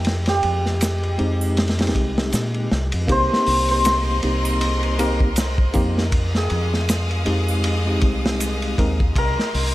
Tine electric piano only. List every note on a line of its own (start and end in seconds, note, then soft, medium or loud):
1.18 1.73 G#3 medium
1.18 1.73 C4 medium
1.18 1.73 D#4 medium
1.18 1.74 G4 medium
1.78 2.66 G#3 medium
1.78 2.67 C4 medium
1.78 2.67 D#4 medium
1.78 2.67 G4 medium
3.07 4.15 A#3 medium
3.07 4.16 C4 medium
3.07 4.16 D#4 medium
3.07 4.17 G4 loud
4.23 4.95 A#3 medium
4.23 4.95 C4 medium
4.23 4.95 D#4 medium
4.23 4.95 G4 medium
4.98 5.27 A#3 medium
4.98 5.27 C4 medium
4.98 5.27 D#4 medium
4.98 5.27 G4 loud
5.74 6.03 A#3 medium
5.74 6.03 C4 medium
5.74 6.03 D#4 medium
5.74 6.03 G4 medium
7.25 7.80 G#3 medium
7.25 7.81 C4 medium
7.25 7.81 D#4 medium
7.25 7.81 G4 medium
7.85 8.74 G#3 medium
7.85 8.74 C4 medium
7.85 8.74 D#4 medium
7.85 8.75 G4 medium
8.78 8.98 G#3 medium
8.78 8.98 C4 medium
8.78 8.98 D#4 medium
8.78 8.98 A#4 medium